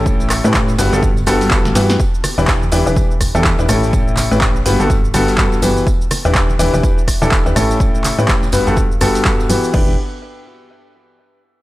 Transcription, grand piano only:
X:1
M:4/4
L:1/16
Q:"Swing 16ths" 1/4=124
K:Edor
V:1 name="Grand piano"
[A,,CEGA]3 [A,,CEGB]2 z [G,,B,FGB] [G,,B,FGA] z2 [G,,B,FGA]2 [G,,B,FGA]2 [E,B,FGB]2 | z3 [E,DEGB]2 z [E,DEGB] [E,DEGB]2 z2 [E,DEGA]2 [DEGB] [A,,CEGA]2- | [A,,CEGA]3 [A,,CEGB]2 z [G,,B,FGB] [G,,B,FGA] z2 [G,,B,FGA]2 [G,,B,FGA]2 [E,B,FGB]2 | z3 [E,DEGB]2 z [E,DEGB] [E,DEGB]2 z2 [E,DEGA]2 [DEGB] [A,,CEGA]2- |
[A,,CEGA]3 [A,,CEGB]2 z [G,,B,FGB] [G,,B,FGA] z2 [G,,B,FGA]2 [G,,FGA]2 [E,B,FGB]2 | [DEGB]2 z12 z2 |]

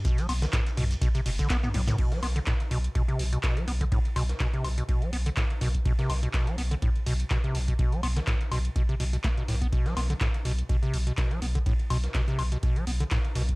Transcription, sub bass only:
X:1
M:4/4
L:1/8
Q:"Swing 16ths" 1/4=124
K:Bphr
V:1 name="Sub bass" clef=bass
z B,,, z B,,, z F,,, z B,,, | z B,,, z B,,, z B,,, z B,,, | z B,,, z B,,, z B,,, z B,,, | z B,,, z B,,, z B,,, z B,,, |
z B,,, z B,,, z B,,, z B,,, | z B,,, z B,,, z B,,, z B,,, | z B,,, z B,,, z B,,, z B,,, |]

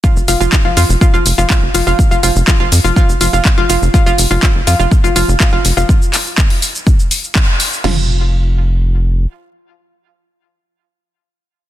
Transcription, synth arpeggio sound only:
X:1
M:4/4
L:1/16
Q:1/4=123
K:Cphr
V:1 name="Synth arpeggio sound"
F z F F z F F z F F z F F z F F | z F F z F F z F F z F F z F F z | F F z F F z F F z F F z F F z F | z16 |
F2 z12 z2 | z16 |]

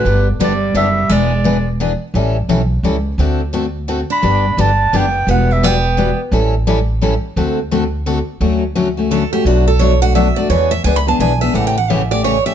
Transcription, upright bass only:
X:1
M:3/4
L:1/8
Q:"Swing" 1/4=172
K:G
V:1 name="Upright bass" clef=bass
G,,,2 G,,,2 F,,,2 | E,,,6 | A,,,2 B,,,2 ^C,,2 | D,,6 |
G,,,2 G,,,2 F,,,2 | E,,,6 | A,,,6 | D,,6 |
[K:D] D,,6 | B,,,6 | E,,2 C,,2 B,,,2 | A,,,6 |]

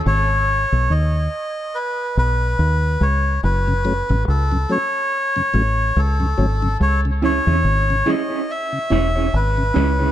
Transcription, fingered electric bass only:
X:1
M:4/4
L:1/16
Q:"Swing 16ths" 1/4=71
K:F#dor
V:1 name="Fingered electric bass" clef=bass
G,,,3 B,,, D,,2 z4 B,,,2 D,,2 C,,2 | F,,,3 A,,, C,,2 z4 A,,,2 C,,2 G,,,2 | C,,3 E,, G,,,2 z4 E,,,2 G,,,2 C,,2 |]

